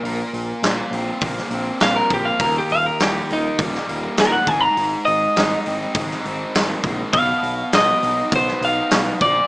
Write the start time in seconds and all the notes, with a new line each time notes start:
Already playing: A#4
0.04 A#1 A#2, open hi-hat
0.33 A#1, open hi-hat
0.62 A#1 F4, snare, open hi-hat
0.91 A#1 C4, open hi-hat
1.21 A#1 A#3, kick, open hi-hat
1.38 snare
1.51 A#1 C4, open hi-hat
1.80 A#1 F3 F5, snare, open hi-hat
1.96 A#4
2.10 A#1 A#3 G4, kick, open hi-hat
2.25 F5
2.39 D#1 D#2 A#4, kick, open hi-hat
2.58 G4
2.70 D#1 F5, open hi-hat
2.86 A#4
3.00 D#1 D#4 G4, snare, open hi-hat
3.30 D#1 A#3 D#4, open hi-hat
3.58 D#1 G3, kick, open hi-hat
3.75 snare
3.89 D#1 A#3, open hi-hat
4.17 D#1 D#3 A#4, snare, open hi-hat
4.32 F#5
4.47 G#1 G#2 G#5, kick, open hi-hat
4.61 A#5
4.77 G#1 G#2, open hi-hat
5.05 G#1 D#5, open hi-hat
5.36 G#1 D#4, snare, open hi-hat
5.66 G#1 C4, open hi-hat
5.95 G#1 G#3, kick, open hi-hat
6.11 snare
6.25 G#1 C4, open hi-hat
6.55 G#1 D#3, snare, open hi-hat
6.84 A#1 G#3, kick, open hi-hat
7.13 B1 B2 F5, kick, open hi-hat
7.43 B1, open hi-hat
7.72 B1 F#4 D#5, snare, open hi-hat
8.03 B1 D#4, open hi-hat
8.32 B1 B3 C5, kick, open hi-hat
8.48 snare
8.61 B1 D#4 F5, open hi-hat
8.91 B1 F#3, snare, open hi-hat
9.21 A#1 A#2 D5, kick, open hi-hat